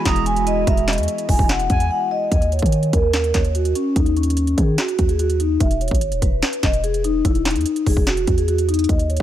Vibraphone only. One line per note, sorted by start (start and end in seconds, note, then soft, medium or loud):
0.06 0.21 D#6 medium
0.26 0.42 G#5 medium
0.47 0.62 D#5 medium
0.67 0.83 E5 loud
0.88 1.26 D#5 medium
1.29 1.45 G#5 medium
1.49 1.78 F#5 medium
1.80 1.88 G#5 medium
1.91 2.06 F#5 medium
2.11 2.27 D#5 medium
2.32 2.47 D#5 medium
2.52 2.91 C#5 medium
2.93 3.32 A#4 medium
3.35 3.50 C#5 medium
3.55 3.71 F#4 medium
3.76 3.91 C#4 medium
3.96 4.12 D#4 medium
4.17 4.55 C#4 medium
4.58 4.73 G#4 medium
4.79 5.07 F#4 medium
5.09 5.17 G#4 medium
5.20 5.35 F#4 medium
5.40 5.56 D#4 medium
5.61 5.76 E5 medium
5.81 6.20 C#5 medium
6.22 6.61 B4 medium
6.63 6.79 D#5 medium
6.84 6.99 G#4 medium
7.04 7.20 D#4 medium
7.25 7.41 E4 medium
7.46 7.84 D#4 medium
7.87 8.02 G#4 medium
8.07 8.36 F#4 medium
8.38 8.46 G#4 medium
8.48 8.64 F#4 medium
8.69 8.84 D#4 medium
8.89 9.05 D#5 medium
9.10 9.22 C#5 medium